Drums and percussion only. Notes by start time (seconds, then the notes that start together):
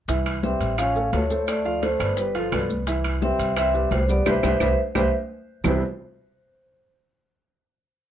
0.09 high bongo, high conga, high timbale, maracas
0.26 high bongo, high conga, high timbale, claves, maracas
0.43 high bongo, high conga, maracas
0.61 high conga, high timbale, maracas
0.78 high bongo, high conga, high timbale, claves, maracas
0.96 high bongo, high conga, maracas
1.13 high bongo, low bongo, high conga, high timbale, low timbale, maracas
1.30 high bongo, high conga, maracas
1.48 high bongo, high conga, high timbale, claves, maracas
1.65 high bongo, high conga, maracas
1.83 high bongo, high conga, high timbale, maracas
2.00 high timbale, claves, maracas
2.17 high bongo, high conga, maracas
2.35 high bongo, high conga, high timbale, maracas
2.52 high bongo, low bongo, high conga, high timbale, low timbale, claves, maracas
2.70 high bongo, high conga, maracas
2.87 high bongo, high conga, high timbale, maracas
3.04 high bongo, high conga, high timbale, claves, maracas
3.22 high bongo, high conga, maracas
3.39 high conga, high timbale, maracas
3.56 high bongo, high conga, high timbale, claves, maracas
3.74 high bongo, high conga, maracas
3.91 high bongo, low bongo, high conga, high timbale, low timbale, maracas
4.08 high bongo, maracas
4.26 high bongo, high conga, high timbale, claves, maracas
4.43 high bongo, high conga, high timbale, claves, maracas
4.60 high bongo, high conga, high timbale, claves, maracas
4.95 high bongo, high conga, high timbale, claves, maracas
5.64 low bongo, low conga, low timbale, claves, maracas